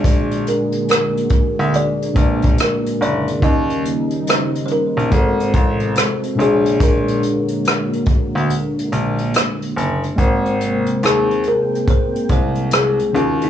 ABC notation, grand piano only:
X:1
M:4/4
L:1/16
Q:"Swing 16ths" 1/4=71
K:Bbdor
V:1 name="Grand piano" clef=bass
B,,,2 z4 z =D,, z2 B,,,2 z2 ^F,,, z | E,,2 z4 z B,,, A,,,2 =A,,,2 z2 B,,,2- | B,,,2 z4 z =D,, z2 B,,,2 z2 ^F,,, z | A,,,3 z E,,2 z4 C,,3 z E,,2 |]